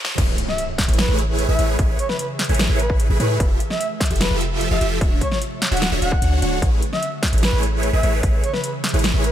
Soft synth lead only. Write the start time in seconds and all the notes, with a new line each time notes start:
0.48 E5
0.98 B4
1.49 E5
1.99 C#5
2.09 B4
2.19 B4
2.80 B4
3.20 B4
3.70 E5
4.21 B4
4.71 E5
5.22 C#5
5.32 C#5
5.72 F#5
5.82 F#5
6.02 F#5
6.92 E5
7.43 B4
7.93 E5
8.43 C#5
8.53 B4
8.64 B4
9.24 B4